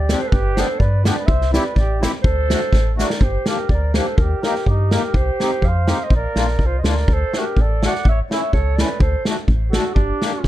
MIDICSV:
0, 0, Header, 1, 6, 480
1, 0, Start_track
1, 0, Tempo, 481541
1, 326, Time_signature, 2, 2, 24, 8
1, 10444, End_track
2, 0, Start_track
2, 0, Title_t, "Clarinet"
2, 0, Program_c, 0, 71
2, 0, Note_on_c, 0, 74, 83
2, 194, Note_on_c, 0, 72, 83
2, 209, Note_off_c, 0, 74, 0
2, 280, Note_on_c, 0, 71, 76
2, 295, Note_off_c, 0, 72, 0
2, 552, Note_on_c, 0, 72, 82
2, 567, Note_off_c, 0, 71, 0
2, 783, Note_on_c, 0, 74, 85
2, 798, Note_off_c, 0, 72, 0
2, 1029, Note_off_c, 0, 74, 0
2, 1035, Note_on_c, 0, 65, 70
2, 1144, Note_off_c, 0, 65, 0
2, 1150, Note_on_c, 0, 74, 73
2, 1254, Note_on_c, 0, 76, 98
2, 1269, Note_off_c, 0, 74, 0
2, 1518, Note_off_c, 0, 76, 0
2, 1525, Note_on_c, 0, 74, 83
2, 1735, Note_off_c, 0, 74, 0
2, 1741, Note_on_c, 0, 74, 76
2, 1983, Note_off_c, 0, 74, 0
2, 2213, Note_on_c, 0, 72, 93
2, 2921, Note_off_c, 0, 72, 0
2, 2981, Note_on_c, 0, 74, 71
2, 3196, Note_on_c, 0, 72, 73
2, 3211, Note_off_c, 0, 74, 0
2, 3450, Note_off_c, 0, 72, 0
2, 3456, Note_on_c, 0, 70, 78
2, 3670, Note_off_c, 0, 70, 0
2, 3692, Note_on_c, 0, 74, 74
2, 3920, Note_off_c, 0, 74, 0
2, 3926, Note_on_c, 0, 72, 74
2, 4156, Note_on_c, 0, 70, 66
2, 4171, Note_off_c, 0, 72, 0
2, 4395, Note_off_c, 0, 70, 0
2, 4401, Note_on_c, 0, 70, 77
2, 4623, Note_off_c, 0, 70, 0
2, 4643, Note_on_c, 0, 67, 66
2, 4881, Note_off_c, 0, 67, 0
2, 4895, Note_on_c, 0, 70, 81
2, 5144, Note_on_c, 0, 72, 84
2, 5159, Note_off_c, 0, 70, 0
2, 5635, Note_on_c, 0, 77, 83
2, 5650, Note_off_c, 0, 72, 0
2, 6015, Note_on_c, 0, 75, 90
2, 6030, Note_off_c, 0, 77, 0
2, 6109, Note_off_c, 0, 75, 0
2, 6134, Note_on_c, 0, 74, 83
2, 6633, Note_on_c, 0, 72, 73
2, 6648, Note_off_c, 0, 74, 0
2, 6757, Note_off_c, 0, 72, 0
2, 6762, Note_on_c, 0, 75, 59
2, 6870, Note_on_c, 0, 74, 73
2, 6885, Note_off_c, 0, 75, 0
2, 7106, Note_on_c, 0, 72, 82
2, 7121, Note_off_c, 0, 74, 0
2, 7364, Note_on_c, 0, 70, 81
2, 7379, Note_off_c, 0, 72, 0
2, 7578, Note_on_c, 0, 74, 82
2, 7593, Note_off_c, 0, 70, 0
2, 7829, Note_on_c, 0, 78, 91
2, 7844, Note_off_c, 0, 74, 0
2, 8041, Note_off_c, 0, 78, 0
2, 8060, Note_on_c, 0, 76, 80
2, 8165, Note_off_c, 0, 76, 0
2, 8296, Note_on_c, 0, 76, 93
2, 8496, Note_off_c, 0, 76, 0
2, 8502, Note_on_c, 0, 73, 95
2, 8736, Note_on_c, 0, 74, 83
2, 8751, Note_off_c, 0, 73, 0
2, 8966, Note_off_c, 0, 74, 0
2, 8972, Note_on_c, 0, 72, 78
2, 9206, Note_off_c, 0, 72, 0
2, 9668, Note_on_c, 0, 69, 76
2, 9895, Note_off_c, 0, 69, 0
2, 9908, Note_on_c, 0, 67, 78
2, 10444, Note_off_c, 0, 67, 0
2, 10444, End_track
3, 0, Start_track
3, 0, Title_t, "Trumpet"
3, 0, Program_c, 1, 56
3, 0, Note_on_c, 1, 67, 76
3, 221, Note_on_c, 1, 69, 61
3, 236, Note_off_c, 1, 67, 0
3, 325, Note_on_c, 1, 67, 91
3, 340, Note_off_c, 1, 69, 0
3, 599, Note_on_c, 1, 69, 74
3, 614, Note_off_c, 1, 67, 0
3, 797, Note_on_c, 1, 71, 77
3, 812, Note_off_c, 1, 69, 0
3, 1050, Note_off_c, 1, 71, 0
3, 1057, Note_on_c, 1, 62, 70
3, 1160, Note_off_c, 1, 62, 0
3, 1189, Note_on_c, 1, 71, 64
3, 1278, Note_on_c, 1, 72, 84
3, 1293, Note_off_c, 1, 71, 0
3, 1529, Note_off_c, 1, 72, 0
3, 1539, Note_on_c, 1, 71, 76
3, 1745, Note_off_c, 1, 71, 0
3, 1789, Note_on_c, 1, 67, 78
3, 2008, Note_off_c, 1, 67, 0
3, 2248, Note_on_c, 1, 69, 91
3, 2938, Note_off_c, 1, 69, 0
3, 2998, Note_on_c, 1, 70, 66
3, 3223, Note_on_c, 1, 67, 77
3, 3238, Note_off_c, 1, 70, 0
3, 3468, Note_off_c, 1, 67, 0
3, 3480, Note_on_c, 1, 67, 64
3, 3683, Note_off_c, 1, 67, 0
3, 3717, Note_on_c, 1, 70, 59
3, 3940, Note_off_c, 1, 70, 0
3, 3969, Note_on_c, 1, 69, 59
3, 4198, Note_on_c, 1, 67, 69
3, 4213, Note_off_c, 1, 69, 0
3, 4425, Note_off_c, 1, 67, 0
3, 4431, Note_on_c, 1, 67, 74
3, 4639, Note_off_c, 1, 67, 0
3, 4681, Note_on_c, 1, 63, 72
3, 4901, Note_off_c, 1, 63, 0
3, 4937, Note_on_c, 1, 67, 70
3, 5160, Note_off_c, 1, 67, 0
3, 5160, Note_on_c, 1, 67, 82
3, 5667, Note_on_c, 1, 72, 70
3, 5682, Note_off_c, 1, 67, 0
3, 6023, Note_off_c, 1, 72, 0
3, 6023, Note_on_c, 1, 72, 65
3, 6113, Note_off_c, 1, 72, 0
3, 6140, Note_on_c, 1, 70, 82
3, 6642, Note_on_c, 1, 65, 75
3, 6657, Note_off_c, 1, 70, 0
3, 6791, Note_off_c, 1, 65, 0
3, 6797, Note_on_c, 1, 72, 50
3, 6895, Note_on_c, 1, 70, 76
3, 6910, Note_off_c, 1, 72, 0
3, 7108, Note_on_c, 1, 69, 86
3, 7123, Note_off_c, 1, 70, 0
3, 7361, Note_on_c, 1, 67, 77
3, 7376, Note_off_c, 1, 69, 0
3, 7592, Note_on_c, 1, 69, 80
3, 7607, Note_off_c, 1, 67, 0
3, 7838, Note_on_c, 1, 74, 72
3, 7853, Note_off_c, 1, 69, 0
3, 8045, Note_off_c, 1, 74, 0
3, 8071, Note_on_c, 1, 73, 76
3, 8174, Note_off_c, 1, 73, 0
3, 8322, Note_on_c, 1, 73, 78
3, 8506, Note_off_c, 1, 73, 0
3, 8512, Note_on_c, 1, 69, 77
3, 8776, Note_on_c, 1, 71, 76
3, 8791, Note_off_c, 1, 69, 0
3, 8979, Note_off_c, 1, 71, 0
3, 8985, Note_on_c, 1, 69, 66
3, 9213, Note_off_c, 1, 69, 0
3, 9679, Note_on_c, 1, 66, 83
3, 9901, Note_off_c, 1, 66, 0
3, 9916, Note_on_c, 1, 62, 79
3, 10444, Note_off_c, 1, 62, 0
3, 10444, End_track
4, 0, Start_track
4, 0, Title_t, "Accordion"
4, 0, Program_c, 2, 21
4, 91, Note_on_c, 2, 60, 69
4, 105, Note_on_c, 2, 62, 65
4, 116, Note_on_c, 2, 67, 73
4, 197, Note_off_c, 2, 60, 0
4, 204, Note_off_c, 2, 62, 0
4, 209, Note_off_c, 2, 67, 0
4, 563, Note_on_c, 2, 59, 76
4, 568, Note_on_c, 2, 62, 67
4, 581, Note_on_c, 2, 67, 84
4, 671, Note_off_c, 2, 59, 0
4, 674, Note_off_c, 2, 62, 0
4, 680, Note_off_c, 2, 67, 0
4, 1041, Note_on_c, 2, 59, 67
4, 1058, Note_on_c, 2, 62, 64
4, 1059, Note_on_c, 2, 67, 84
4, 1148, Note_off_c, 2, 59, 0
4, 1157, Note_off_c, 2, 62, 0
4, 1157, Note_off_c, 2, 67, 0
4, 1516, Note_on_c, 2, 60, 67
4, 1520, Note_on_c, 2, 64, 67
4, 1539, Note_on_c, 2, 67, 85
4, 1625, Note_off_c, 2, 60, 0
4, 1627, Note_off_c, 2, 64, 0
4, 1636, Note_off_c, 2, 67, 0
4, 2000, Note_on_c, 2, 60, 72
4, 2002, Note_on_c, 2, 64, 58
4, 2010, Note_on_c, 2, 67, 72
4, 2106, Note_off_c, 2, 60, 0
4, 2107, Note_off_c, 2, 64, 0
4, 2112, Note_off_c, 2, 67, 0
4, 2481, Note_on_c, 2, 57, 74
4, 2492, Note_on_c, 2, 62, 67
4, 2497, Note_on_c, 2, 66, 73
4, 2588, Note_off_c, 2, 57, 0
4, 2593, Note_off_c, 2, 62, 0
4, 2596, Note_off_c, 2, 66, 0
4, 2955, Note_on_c, 2, 57, 70
4, 2965, Note_on_c, 2, 62, 71
4, 2966, Note_on_c, 2, 66, 90
4, 3067, Note_off_c, 2, 57, 0
4, 3072, Note_off_c, 2, 62, 0
4, 3073, Note_off_c, 2, 66, 0
4, 3459, Note_on_c, 2, 58, 65
4, 3465, Note_on_c, 2, 62, 56
4, 3475, Note_on_c, 2, 67, 69
4, 3562, Note_off_c, 2, 58, 0
4, 3565, Note_off_c, 2, 62, 0
4, 3569, Note_off_c, 2, 67, 0
4, 3937, Note_on_c, 2, 58, 61
4, 3945, Note_on_c, 2, 62, 55
4, 3956, Note_on_c, 2, 67, 75
4, 4042, Note_off_c, 2, 58, 0
4, 4046, Note_off_c, 2, 62, 0
4, 4052, Note_off_c, 2, 67, 0
4, 4417, Note_on_c, 2, 58, 72
4, 4426, Note_on_c, 2, 63, 58
4, 4441, Note_on_c, 2, 67, 76
4, 4523, Note_off_c, 2, 58, 0
4, 4528, Note_off_c, 2, 63, 0
4, 4535, Note_off_c, 2, 67, 0
4, 4901, Note_on_c, 2, 58, 62
4, 4906, Note_on_c, 2, 63, 58
4, 4918, Note_on_c, 2, 67, 72
4, 5004, Note_off_c, 2, 58, 0
4, 5007, Note_off_c, 2, 63, 0
4, 5013, Note_off_c, 2, 67, 0
4, 5387, Note_on_c, 2, 60, 75
4, 5392, Note_on_c, 2, 63, 53
4, 5400, Note_on_c, 2, 67, 63
4, 5486, Note_off_c, 2, 60, 0
4, 5488, Note_off_c, 2, 63, 0
4, 5492, Note_off_c, 2, 67, 0
4, 5843, Note_on_c, 2, 60, 62
4, 5858, Note_on_c, 2, 67, 73
4, 5863, Note_on_c, 2, 63, 58
4, 5955, Note_off_c, 2, 60, 0
4, 5962, Note_off_c, 2, 67, 0
4, 5965, Note_off_c, 2, 63, 0
4, 6323, Note_on_c, 2, 58, 69
4, 6341, Note_on_c, 2, 62, 51
4, 6347, Note_on_c, 2, 65, 67
4, 6436, Note_off_c, 2, 58, 0
4, 6445, Note_off_c, 2, 62, 0
4, 6448, Note_off_c, 2, 65, 0
4, 6818, Note_on_c, 2, 58, 58
4, 6828, Note_on_c, 2, 62, 57
4, 6836, Note_on_c, 2, 65, 72
4, 6927, Note_off_c, 2, 58, 0
4, 6932, Note_off_c, 2, 62, 0
4, 6936, Note_off_c, 2, 65, 0
4, 7314, Note_on_c, 2, 57, 70
4, 7326, Note_on_c, 2, 62, 63
4, 7335, Note_on_c, 2, 66, 70
4, 7418, Note_off_c, 2, 57, 0
4, 7424, Note_off_c, 2, 62, 0
4, 7428, Note_off_c, 2, 66, 0
4, 7804, Note_on_c, 2, 57, 59
4, 7812, Note_on_c, 2, 62, 54
4, 7818, Note_on_c, 2, 66, 71
4, 7903, Note_off_c, 2, 57, 0
4, 7907, Note_off_c, 2, 62, 0
4, 7910, Note_off_c, 2, 66, 0
4, 8274, Note_on_c, 2, 57, 59
4, 8284, Note_on_c, 2, 61, 53
4, 8288, Note_on_c, 2, 64, 69
4, 8378, Note_off_c, 2, 57, 0
4, 8383, Note_off_c, 2, 61, 0
4, 8384, Note_off_c, 2, 64, 0
4, 8753, Note_on_c, 2, 57, 62
4, 8763, Note_on_c, 2, 61, 67
4, 8765, Note_on_c, 2, 64, 65
4, 8854, Note_off_c, 2, 57, 0
4, 8859, Note_off_c, 2, 61, 0
4, 8860, Note_off_c, 2, 64, 0
4, 9232, Note_on_c, 2, 57, 60
4, 9232, Note_on_c, 2, 62, 55
4, 9246, Note_on_c, 2, 66, 70
4, 9330, Note_off_c, 2, 62, 0
4, 9331, Note_off_c, 2, 57, 0
4, 9337, Note_off_c, 2, 66, 0
4, 9716, Note_on_c, 2, 57, 69
4, 9722, Note_on_c, 2, 62, 64
4, 9731, Note_on_c, 2, 66, 76
4, 9811, Note_off_c, 2, 57, 0
4, 9814, Note_off_c, 2, 62, 0
4, 9818, Note_off_c, 2, 66, 0
4, 10180, Note_on_c, 2, 58, 61
4, 10184, Note_on_c, 2, 62, 64
4, 10198, Note_on_c, 2, 67, 72
4, 10283, Note_off_c, 2, 58, 0
4, 10285, Note_off_c, 2, 62, 0
4, 10291, Note_off_c, 2, 67, 0
4, 10444, End_track
5, 0, Start_track
5, 0, Title_t, "FM bass"
5, 0, Program_c, 3, 39
5, 0, Note_on_c, 3, 38, 90
5, 155, Note_off_c, 3, 38, 0
5, 326, Note_on_c, 3, 31, 93
5, 636, Note_off_c, 3, 31, 0
5, 798, Note_on_c, 3, 43, 91
5, 1109, Note_off_c, 3, 43, 0
5, 1275, Note_on_c, 3, 36, 105
5, 1586, Note_off_c, 3, 36, 0
5, 1755, Note_on_c, 3, 33, 84
5, 2067, Note_off_c, 3, 33, 0
5, 2235, Note_on_c, 3, 38, 88
5, 2549, Note_off_c, 3, 38, 0
5, 2719, Note_on_c, 3, 33, 82
5, 3033, Note_off_c, 3, 33, 0
5, 3199, Note_on_c, 3, 31, 111
5, 3366, Note_off_c, 3, 31, 0
5, 3681, Note_on_c, 3, 38, 88
5, 3997, Note_off_c, 3, 38, 0
5, 4166, Note_on_c, 3, 39, 94
5, 4332, Note_off_c, 3, 39, 0
5, 4650, Note_on_c, 3, 43, 84
5, 4961, Note_off_c, 3, 43, 0
5, 5121, Note_on_c, 3, 36, 101
5, 5287, Note_off_c, 3, 36, 0
5, 5601, Note_on_c, 3, 41, 83
5, 5916, Note_off_c, 3, 41, 0
5, 6085, Note_on_c, 3, 34, 86
5, 6251, Note_off_c, 3, 34, 0
5, 6339, Note_on_c, 3, 34, 75
5, 6547, Note_off_c, 3, 34, 0
5, 6566, Note_on_c, 3, 36, 70
5, 6799, Note_off_c, 3, 36, 0
5, 6818, Note_on_c, 3, 38, 84
5, 7030, Note_off_c, 3, 38, 0
5, 7056, Note_on_c, 3, 38, 100
5, 7224, Note_off_c, 3, 38, 0
5, 7543, Note_on_c, 3, 33, 99
5, 7856, Note_off_c, 3, 33, 0
5, 8026, Note_on_c, 3, 33, 82
5, 8190, Note_off_c, 3, 33, 0
5, 8503, Note_on_c, 3, 37, 94
5, 8812, Note_off_c, 3, 37, 0
5, 8969, Note_on_c, 3, 38, 100
5, 9134, Note_off_c, 3, 38, 0
5, 9448, Note_on_c, 3, 33, 107
5, 9759, Note_off_c, 3, 33, 0
5, 9927, Note_on_c, 3, 31, 97
5, 10091, Note_off_c, 3, 31, 0
5, 10405, Note_on_c, 3, 38, 88
5, 10444, Note_off_c, 3, 38, 0
5, 10444, End_track
6, 0, Start_track
6, 0, Title_t, "Drums"
6, 92, Note_on_c, 9, 38, 75
6, 92, Note_on_c, 9, 44, 45
6, 191, Note_off_c, 9, 38, 0
6, 191, Note_off_c, 9, 44, 0
6, 322, Note_on_c, 9, 36, 81
6, 422, Note_off_c, 9, 36, 0
6, 570, Note_on_c, 9, 38, 79
6, 570, Note_on_c, 9, 44, 39
6, 669, Note_off_c, 9, 38, 0
6, 669, Note_off_c, 9, 44, 0
6, 797, Note_on_c, 9, 36, 58
6, 897, Note_off_c, 9, 36, 0
6, 1050, Note_on_c, 9, 38, 86
6, 1050, Note_on_c, 9, 44, 46
6, 1150, Note_off_c, 9, 38, 0
6, 1150, Note_off_c, 9, 44, 0
6, 1278, Note_on_c, 9, 36, 83
6, 1377, Note_off_c, 9, 36, 0
6, 1411, Note_on_c, 9, 38, 28
6, 1510, Note_off_c, 9, 38, 0
6, 1533, Note_on_c, 9, 38, 66
6, 1533, Note_on_c, 9, 44, 45
6, 1633, Note_off_c, 9, 38, 0
6, 1633, Note_off_c, 9, 44, 0
6, 1757, Note_on_c, 9, 36, 58
6, 1761, Note_on_c, 9, 38, 25
6, 1856, Note_off_c, 9, 36, 0
6, 1861, Note_off_c, 9, 38, 0
6, 2021, Note_on_c, 9, 38, 85
6, 2021, Note_on_c, 9, 44, 50
6, 2121, Note_off_c, 9, 38, 0
6, 2121, Note_off_c, 9, 44, 0
6, 2236, Note_on_c, 9, 36, 89
6, 2335, Note_off_c, 9, 36, 0
6, 2494, Note_on_c, 9, 38, 78
6, 2494, Note_on_c, 9, 44, 37
6, 2593, Note_off_c, 9, 38, 0
6, 2593, Note_off_c, 9, 44, 0
6, 2717, Note_on_c, 9, 36, 69
6, 2720, Note_on_c, 9, 38, 41
6, 2816, Note_off_c, 9, 36, 0
6, 2820, Note_off_c, 9, 38, 0
6, 2983, Note_on_c, 9, 38, 61
6, 2983, Note_on_c, 9, 44, 44
6, 3083, Note_off_c, 9, 38, 0
6, 3083, Note_off_c, 9, 44, 0
6, 3092, Note_on_c, 9, 38, 64
6, 3192, Note_off_c, 9, 38, 0
6, 3198, Note_on_c, 9, 36, 71
6, 3297, Note_off_c, 9, 36, 0
6, 3446, Note_on_c, 9, 38, 70
6, 3546, Note_off_c, 9, 38, 0
6, 3681, Note_on_c, 9, 36, 57
6, 3781, Note_off_c, 9, 36, 0
6, 3929, Note_on_c, 9, 38, 77
6, 4028, Note_off_c, 9, 38, 0
6, 4165, Note_on_c, 9, 36, 75
6, 4264, Note_off_c, 9, 36, 0
6, 4418, Note_on_c, 9, 38, 64
6, 4518, Note_off_c, 9, 38, 0
6, 4540, Note_on_c, 9, 38, 21
6, 4640, Note_off_c, 9, 38, 0
6, 4649, Note_on_c, 9, 36, 49
6, 4749, Note_off_c, 9, 36, 0
6, 4897, Note_on_c, 9, 38, 72
6, 4997, Note_off_c, 9, 38, 0
6, 5126, Note_on_c, 9, 36, 68
6, 5226, Note_off_c, 9, 36, 0
6, 5384, Note_on_c, 9, 38, 72
6, 5484, Note_off_c, 9, 38, 0
6, 5605, Note_on_c, 9, 36, 55
6, 5705, Note_off_c, 9, 36, 0
6, 5857, Note_on_c, 9, 38, 80
6, 5956, Note_off_c, 9, 38, 0
6, 6085, Note_on_c, 9, 36, 72
6, 6185, Note_off_c, 9, 36, 0
6, 6339, Note_on_c, 9, 38, 69
6, 6438, Note_off_c, 9, 38, 0
6, 6455, Note_on_c, 9, 38, 24
6, 6554, Note_off_c, 9, 38, 0
6, 6567, Note_on_c, 9, 36, 53
6, 6667, Note_off_c, 9, 36, 0
6, 6822, Note_on_c, 9, 38, 74
6, 6921, Note_off_c, 9, 38, 0
6, 6950, Note_on_c, 9, 38, 24
6, 7049, Note_off_c, 9, 38, 0
6, 7057, Note_on_c, 9, 36, 71
6, 7157, Note_off_c, 9, 36, 0
6, 7312, Note_on_c, 9, 38, 62
6, 7411, Note_off_c, 9, 38, 0
6, 7541, Note_on_c, 9, 36, 55
6, 7641, Note_off_c, 9, 36, 0
6, 7801, Note_on_c, 9, 38, 83
6, 7900, Note_off_c, 9, 38, 0
6, 7928, Note_on_c, 9, 38, 21
6, 8026, Note_on_c, 9, 36, 71
6, 8027, Note_off_c, 9, 38, 0
6, 8126, Note_off_c, 9, 36, 0
6, 8284, Note_on_c, 9, 38, 60
6, 8383, Note_off_c, 9, 38, 0
6, 8505, Note_on_c, 9, 36, 54
6, 8604, Note_off_c, 9, 36, 0
6, 8756, Note_on_c, 9, 38, 69
6, 8856, Note_off_c, 9, 38, 0
6, 8975, Note_on_c, 9, 36, 82
6, 9075, Note_off_c, 9, 36, 0
6, 9223, Note_on_c, 9, 38, 63
6, 9323, Note_off_c, 9, 38, 0
6, 9449, Note_on_c, 9, 36, 58
6, 9549, Note_off_c, 9, 36, 0
6, 9700, Note_on_c, 9, 38, 76
6, 9800, Note_off_c, 9, 38, 0
6, 9928, Note_on_c, 9, 36, 70
6, 10028, Note_off_c, 9, 36, 0
6, 10184, Note_on_c, 9, 38, 68
6, 10283, Note_off_c, 9, 38, 0
6, 10408, Note_on_c, 9, 38, 43
6, 10410, Note_on_c, 9, 36, 57
6, 10444, Note_off_c, 9, 36, 0
6, 10444, Note_off_c, 9, 38, 0
6, 10444, End_track
0, 0, End_of_file